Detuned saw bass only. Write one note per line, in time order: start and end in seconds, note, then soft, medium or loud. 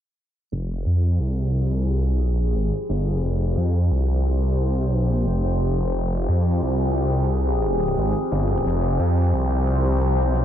0.52 0.85 F1 medium
0.86 1.18 F2 medium
1.20 2.15 C2 medium
2.15 2.41 B1 medium
2.41 2.54 A#1 medium
2.55 2.71 G#1 medium
2.89 3.22 G1 medium
3.23 3.56 F1 medium
3.57 3.90 F2 medium
3.91 4.85 C2 loud
4.85 5.12 B1 loud
5.12 5.25 A#1 loud
5.27 5.42 F1 medium
5.44 5.93 F1 medium
5.94 6.27 F1 medium
6.28 6.61 F2 loud
6.62 7.96 C2 loud
7.98 8.13 G#1 medium
8.32 8.64 G1 medium
8.65 8.98 F1 loud
8.99 9.32 F2 medium
9.33 10.28 C2 loud
10.28 10.45 B1 loud